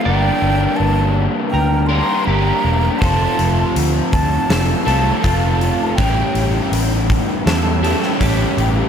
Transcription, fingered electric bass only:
X:1
M:4/4
L:1/8
Q:1/4=81
K:F
V:1 name="Fingered electric bass" clef=bass
G,,, G,,, G,,,2 D,,2 G,,, E,,, | F,,, F,,, D,, D,, F,,, C,, F,,,2 | A,,, A,,, A,,,2 E,,2 A,,, A,,, |]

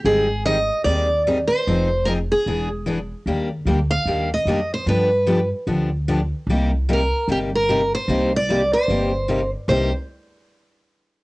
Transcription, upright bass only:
X:1
M:4/4
L:1/8
Q:"Swing" 1/4=149
K:Cm
V:1 name="Upright bass" clef=bass
A,,,4 E,,4 | F,,,4 =E,,,4 | E,,2 D,,2 E,,2 F,,2 | G,,4 D,,4 |
C,,4 G,,,4 | C,,4 G,,,4 | C,, z6 z |]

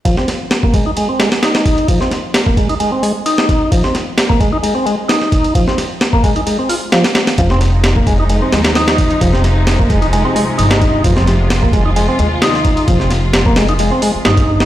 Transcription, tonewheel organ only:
X:1
M:4/4
L:1/16
Q:"Swing 16ths" 1/4=131
K:Fm
V:1 name="Tonewheel organ"
F, C z3 B, A, E A, C A, z E4 | F, C z3 B, A, E A, C A, z E4 | F, C z3 B, A, E A, C A, z E4 | F, C z3 B, A, E A, C F z F, z3 |
F, C z3 B, A, E A, C A, z E4 | F, C z3 B, A, E A, C A, z E4 | F, C z3 B, A, E A, C A, z E4 | F, C z3 B, A, E A, C A, z E4 |]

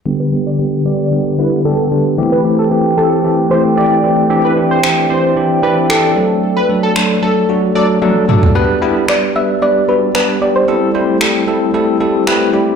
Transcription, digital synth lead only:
X:1
M:4/4
L:1/16
Q:1/4=113
K:G
V:1 name="Digital synth lead"
z B z d z2 d3 z B z A3 z | z B z A z2 A3 z c z d3 z | z B z c z2 c3 z B z A3 z | z B z A z2 A3 z d z4 z |
z16 | z16 |]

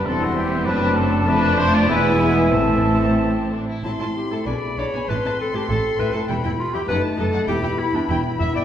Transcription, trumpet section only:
X:1
M:2/4
L:1/16
Q:1/4=99
K:Dmix
V:1 name="Trumpet section"
A F G2 B2 A2 | [K:Am] B2 c d B2 ^G2 | A6 z2 | z8 |
z8 | z8 | z8 |]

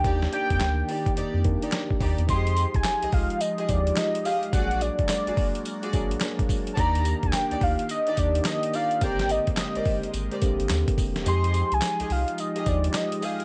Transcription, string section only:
X:1
M:4/4
L:1/16
Q:"Swing 16ths" 1/4=107
K:Fdor
V:1 name="String section"
[EGd] z [EGd] z3 [EGd] z [EGd] z2 [EGd] z2 [EGd] z | [GAe]2 z3 [GAe] z3 [GAe] z4 [GAe] z | [^FAd]2 z3 [FAd] z3 [FAd] z6 | [EGd]2 z3 [EGd] z3 [EGd] z4 [EGd] z |
[GBcd]2 z3 [GBcd] z3 [GBcd] z6 | [GAe]2 z3 [GAe] z3 [GAe] z4 [GAe] z |]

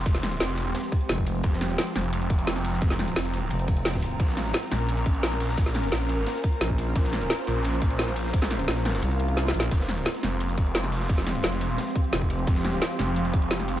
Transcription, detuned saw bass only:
X:1
M:4/4
L:1/8
Q:1/4=174
K:Fm
V:1 name="Detuned saw bass" clef=bass
F,,,2 F,,,2 z4 | F,,,2 z F,,,4- F,,, | F,,,2 F,,,2 z4 | B,,,2 z B,,,4- B,,, |
B,,,2 B,,,2 z4 | B,,,2 z B,,,4- B,,, | z2 B,,,2 z4 | F,,,2 z F,,,4- F,,, |
F,,,2 F,,,2 z4 | F,,,2 z F,,,4- F,,, |]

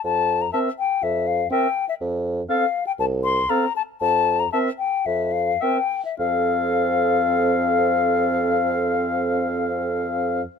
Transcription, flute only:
X:1
M:4/4
L:1/16
Q:1/4=112
K:F
V:1 name="Flute"
a3 b a2 g2 e2 f2 g3 e | z4 f3 g a2 c'2 b2 a2 | a3 b a2 g2 e2 f2 g3 e | f16- |
f16 |]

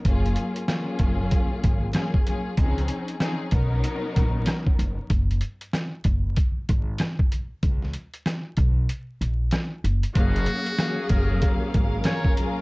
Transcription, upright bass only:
X:1
M:4/4
L:1/16
Q:"Swing 16ths" 1/4=95
K:F#
V:1 name="Upright bass" clef=bass
F,,,2 z4 F,,,2 z2 G,,,2 z4 | C,,2 z4 B,,,2 z2 A,,,2 z2 F,,, z | F,,,2 z4 F,,,2 z2 G,,,2 z4 | C,,2 z4 B,,,2 z2 A,,,2 z2 F,,, z |
F,,,2 z4 F,,,2 z2 G,,,2 z4 |]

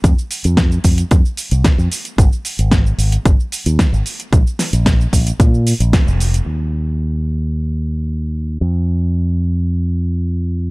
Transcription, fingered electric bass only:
X:1
M:4/4
L:1/16
Q:1/4=112
K:Bbmix
V:1 name="Fingered electric bass" clef=bass
F,, z2 F,,2 z F,, z F,, z2 C,, z F,, z2 | A,,, z2 A,,,2 z A,,, z A,,, z2 E,, z A,,, z2 | B,,, z2 B,,,2 z B,,, z B,,2 z B,,, z F,,,2 z | E,,16 |
F,,16 |]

